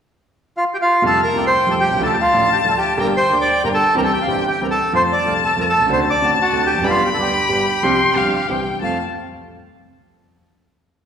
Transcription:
0.57 bandoneon F4 F5
0.74 bandoneon G4 G5
0.82 bandoneon F4 F5
1.02 grand piano F2 C3 F3 G3 A3 F4, bandoneon A3 F4 G4, violin F5
1.06 bandoneon A4 A5
1.23 bandoneon A#4 A#5
1.28 violin A5
1.34 grand piano C2 C3 G3 A3 F4, bandoneon A3 F4 G4, violin G5
1.47 bandoneon C5 C6
1.67 grand piano F2 C3 F3 G3 A3 F4, bandoneon A3 F4 G4
1.71 bandoneon A4 A5
1.80 bandoneon G4 G5
1.89 grand piano B1 C2
1.96 grand piano C#2
2.00 grand piano D2 D3 F3 A3 F4, bandoneon A3 D4 F4 A5, violin A5
2.05 bandoneon A4
2.13 bandoneon G4 G5
2.21 bandoneon F4 F5
2.32 grand piano A1 A2 D3 F3 A3 F4, bandoneon A3 D4 F4
2.53 bandoneon G4 G5
2.64 grand piano D2 D3 F3 A3 F4, bandoneon A3 D4 F4
2.69 bandoneon A4 A5
2.78 bandoneon G4 G5
2.97 grand piano G1 G2 D3 G3 A#3 G4, bandoneon A#3 D4 G4 A#4 A#5, violin G5
3.17 bandoneon C5 C6
3.30 grand piano D2 D3 G3 A#3 G4, bandoneon A#3 D4 G4
3.41 bandoneon D5 D6
3.63 grand piano G1 G2 D3 G3 A#3 G4, bandoneon A#3 D4 G4 A#4 A#5
3.74 bandoneon A4 A5
3.94 grand piano C2 C3 E3 G3 C4 G4, bandoneon C4 E4 G4 A#4 A#5, violin G5
4.05 bandoneon A4 A5
4.13 bandoneon G4 G5
4.22 bandoneon F5
4.27 grand piano G1 G2 E3 G3 C4 G4, bandoneon C4 E4 G4 G5
4.47 bandoneon G4 G5
4.61 grand piano C2 C3 E3 G3 C4 G4, bandoneon C4 E4 G4 A#4 A#5
4.71 bandoneon A4 A5
4.93 grand piano F2 F3 A3 C4 A4, bandoneon C4 F4 A4 C5 C6, violin A5
5.12 bandoneon D5 D6
5.25 grand piano C2 C3 F3 A3 C4 A4, bandoneon C4 F4 A4
5.45 bandoneon A4 A5
5.56 grand piano F2 F3 A3 C4 A4, bandoneon C4 F4 A4
5.61 bandoneon A#4 A#5
5.69 bandoneon A4 A5
5.78 grand piano B1 C2
5.86 grand piano C#2 D2 D3 A3 C4 F#4, violin A5
5.90 bandoneon C4 D4 F#4 C5 C6
6.10 bandoneon D5 D6
6.21 grand piano A1 A2 D3 A3 C4 F#4, bandoneon C4 D4 F#4
6.42 bandoneon F#4 F#5
6.52 grand piano D2 D3 A3 C4 F#4, bandoneon C4 D4 F#4
6.66 bandoneon G4 G5
6.74 grand piano E2 F2
6.81 grand piano G1 F#2 G2 D3 G3 B3 G4, violin B5
6.86 bandoneon B3 D4 F4 G4
6.91 bandoneon F5
7.06 bandoneon G4 G5
7.14 grand piano D2 D3 G3, bandoneon A4 A5
7.18 grand piano B3 G4, bandoneon B3 D4 G4
7.22 bandoneon G4 G5
7.49 grand piano G1 G2 D3 G3 B3 G4, bandoneon B3 D4 G4
7.83 grand piano C2 C3 F3 G3 C4 G4, bandoneon C4 F4 G4, violin C6
8.15 grand piano G1 G2 F3 G3 C4 G4, bandoneon C4 F4 G4, violin F5
8.49 grand piano C2 C3 E3 G3 C4 G4, bandoneon C4 E4 G4, violin G5
8.82 grand piano F2 A3 C4 F4, bandoneon C4 F4 A4 F5, violin A5

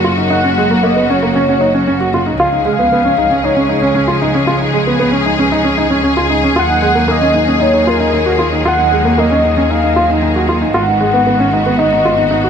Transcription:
Already playing: double bass section F#1, string section C#3 F#3 A#3 F#4
0.04 grand piano F4
0.18 grand piano D#4
0.30 grand piano D#4, soft synth lead F#5
0.44 grand piano C#4
0.58 grand piano G#3
0.71 grand piano A#3
0.83 grand piano A#3, soft synth lead D#5
0.96 grand piano B3
1.10 grand piano C#4, soft synth lead C#5
1.23 grand piano A#3
1.35 grand piano C#4
1.49 grand piano C#4
1.61 grand piano D#4
1.74 grand piano C#4
1.87 grand piano C#4
2.01 grand piano F#4
2.14 grand piano F4
2.26 grand piano D#4
2.39 double bass section C#2, string section C#3 F3 G#3 G#4, grand piano F4, soft synth lead F5
2.53 grand piano D#4
2.65 grand piano G#3
2.79 grand piano B3
2.92 grand piano B3
3.05 grand piano C#4
3.18 grand piano D#4
3.31 grand piano C#4
3.43 grand piano D#4, soft synth lead C#5
3.57 grand piano C#4
3.69 grand piano D#4
3.82 grand piano C#4
3.95 grand piano C#4
4.08 grand piano F4
4.22 grand piano D#4
4.35 grand piano C#4
4.47 grand piano F4
4.61 grand piano D#4
4.74 grand piano G#3
4.87 grand piano B3
4.99 grand piano B3
5.12 grand piano C#4
5.26 grand piano D#4
5.39 grand piano C#4
5.52 grand piano D#4
5.64 grand piano C#4
5.78 grand piano D#4
5.90 grand piano C#4
6.03 grand piano C#4
6.17 grand piano F4
6.30 grand piano D#4
6.44 grand piano C#4
6.56 double bass section D#2, string section D#3 F#3 A#3, grand piano F4, soft synth lead F#5
6.70 grand piano D#4
6.82 grand piano G#3
6.95 grand piano A#3
7.08 grand piano A#3, soft synth lead D#5
7.22 grand piano C#4
7.34 grand piano D#4
7.47 grand piano C#4
7.60 grand piano D#4, soft synth lead C#5
7.74 grand piano D#4
7.87 grand piano F4, soft synth lead A#4
8.00 grand piano D#4
8.13 grand piano D#4
8.26 grand piano F#4
8.39 grand piano F4
8.52 grand piano D#4
8.65 grand piano F4, soft synth lead F#5
8.79 grand piano D#4
8.92 grand piano G#3
9.05 grand piano A#3
9.18 grand piano A#3, soft synth lead D#5
9.31 grand piano C#4
9.44 grand piano D#4
9.57 grand piano C#4
9.70 grand piano D#4, soft synth lead F5
9.84 grand piano D#4
9.96 grand piano F4
10.10 grand piano D#4
10.22 grand piano D#4
10.36 grand piano F#4
10.49 grand piano F4
10.62 grand piano D#4
10.73 double bass section G#1, string section G#3 B3 F#4, grand piano F4, soft synth lead F#5
10.88 grand piano D#4
11.01 grand piano G#3
11.14 grand piano B3
11.27 grand piano B3
11.40 grand piano C#4
11.53 grand piano D#4
11.66 grand piano B3
11.77 grand piano D#4, soft synth lead D#5
11.93 grand piano D#4
12.05 grand piano F4
12.18 grand piano D#4
12.31 grand piano D#4
12.44 grand piano F#4

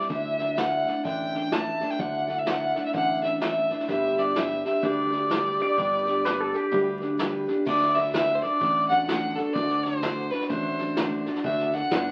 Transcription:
0.01 snare
0.09 fingered electric bass D2, steel-string acoustic guitar D3 A3 D4 E4 A4, fiddle E5, kick, snare
0.39 steel-string acoustic guitar D4 E4 A4, snare
0.57 steel-string acoustic guitar A3 D4 E4 A4, fiddle F#5, snare, hi-hat pedal
0.86 steel-string acoustic guitar D4 E4 A4, snare
1.04 fingered electric bass A1, steel-string acoustic guitar D3 A3 D4 E4 A4, fiddle G5, kick, snare
1.33 steel-string acoustic guitar D4 E4 A4, snare
1.51 steel-string acoustic guitar A3 D4 E4 A4, fiddle A5, snare, hi-hat pedal
1.81 steel-string acoustic guitar D4 E4 A4, snare
1.90 fiddle G5, snare
1.99 fingered electric bass D2, steel-string acoustic guitar D3 A3 D4 E4 A4, fiddle F#5, kick, snare
2.28 steel-string acoustic guitar D4 E4 A4, snare
2.39 fiddle E5
2.46 steel-string acoustic guitar A3 D4 E4 A4, fiddle F#5, snare, hi-hat pedal
2.75 steel-string acoustic guitar D4 E4 A4, snare
2.86 fiddle E5
2.93 fingered electric bass A1, steel-string acoustic guitar D3 A3 D4 E4 A4, fiddle F#5, kick, snare
3.22 steel-string acoustic guitar D4 E4 A4, fiddle E5, snare
3.40 steel-string acoustic guitar A3 D4 E4 A4, fiddle E5, snare, hi-hat pedal
3.69 steel-string acoustic guitar D4 E4 A4, snare
3.80 snare
3.87 fingered electric bass G1, steel-string acoustic guitar G3 D4 G4 B4, fiddle E5, kick, snare
4.16 steel-string acoustic guitar D4 G4 B4, fiddle D5, snare
4.35 steel-string acoustic guitar G3 D4 G4 B4, fiddle E5, snare, hi-hat pedal
4.64 steel-string acoustic guitar D4 G4 B4, fiddle E5, snare
4.82 fingered electric bass D2, steel-string acoustic guitar G3 D4 G4 B4, fiddle D5, kick, snare
5.11 steel-string acoustic guitar D4 G4 B4, snare
5.29 steel-string acoustic guitar G3 D4 G4 B4, snare, hi-hat pedal
5.58 steel-string acoustic guitar D4 G4 B4, pedal steel guitar D5, snare
5.76 fingered electric bass G1, steel-string acoustic guitar G3 D4 G4 B4, kick, snare
6.05 steel-string acoustic guitar D4 G4 B4, snare
6.24 steel-string acoustic guitar G3 D4 B4, snare, hi-hat pedal
6.40 pedal steel guitar A4
6.53 steel-string acoustic guitar D4 G4 B4, snare
6.71 fingered electric bass D2, steel-string acoustic guitar G3 D4 G4 B4, kick, snare
7.00 steel-string acoustic guitar D4 G4 B4, snare
7.18 steel-string acoustic guitar G3 D4 G4 B4, snare, hi-hat pedal
7.47 steel-string acoustic guitar D4 G4 B4, snare
7.65 fingered electric bass D2, steel-string acoustic guitar D3 A3 D4 F#4 A4, fiddle D5, kick, snare, crash
7.82 snare
7.95 steel-string acoustic guitar D4 F#4 A4, fiddle E5, snare
8.13 steel-string acoustic guitar D3 A3 D4 F#4 A4, fiddle E5, kick, snare, hi-hat pedal
8.35 fiddle C5
8.42 steel-string acoustic guitar D4 F#4 A4, fiddle D5, snare
8.61 fingered electric bass A1, steel-string acoustic guitar A3 D4 F#4 A4, kick, snare
8.88 steel-string acoustic guitar D4 F#4 A4, fiddle F#5, snare
9.06 steel-string acoustic guitar D3 A3 D4 F#4 A4, fiddle F#5, kick, snare, hi-hat pedal
9.35 steel-string acoustic guitar D4 F#4 A4, fiddle A4, snare
9.53 fingered electric bass D2, steel-string acoustic guitar D3 A3 D4 F#4 A4, fiddle D5, kick, snare
9.70 snare
9.84 steel-string acoustic guitar D4 F#4 A4, fiddle C5, snare
10.02 steel-string acoustic guitar D3 A3 D4 F#4 A4, kick, snare, hi-hat pedal
10.30 steel-string acoustic guitar D4 F#4 A4, fiddle B4, snare
10.41 snare
10.49 fingered electric bass A1, steel-string acoustic guitar A3 D4 F#4 A4, fiddle C5, kick, snare
10.79 steel-string acoustic guitar D4 F#4 A4, snare
10.97 steel-string acoustic guitar D3 A3 D4 F#4 A4, kick, snare, hi-hat pedal
11.26 steel-string acoustic guitar D4 F#4 A4, snare
11.35 snare
11.44 fingered electric bass D2, steel-string acoustic guitar D3 A3 D4 F#4 A4, fiddle E5, kick, snare
11.59 snare
11.66 fiddle E5
11.73 steel-string acoustic guitar D4 F#4 A4, fiddle F#5, snare
11.91 fingered electric bass G1, steel-string acoustic guitar D3 A3 D4 F#4 A4, kick, snare, hi-hat pedal

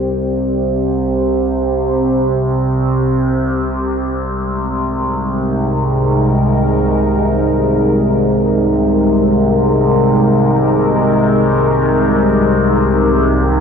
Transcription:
Already playing: synth drone C2 C3, ambient pad C4 G4 C5
4.04 ambient pad G#3
4.36 ambient pad D#4
4.54 ambient pad A#4

